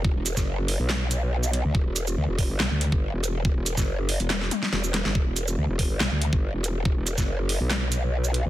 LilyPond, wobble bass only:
\new Staff \with { instrumentName = "Wobble bass" } { \clef bass \time 4/4 \key e \minor \tempo 4 = 141 e,,16 e,,8 fis,,4 b,,2 d,16 | e,,16 e,,8. d,16 e,,8 g,,16 b,,16 d,8 g,,8 e,,8. | e,,16 e,,8 fis,,4 e,,8. r8 e,,8. g,,16 | e,,16 e,,8. d,16 e,,8 g,,16 b,,16 d,8 g,,8 e,,8. |
e,,16 e,,8 fis,,4 b,,2 d,16 | }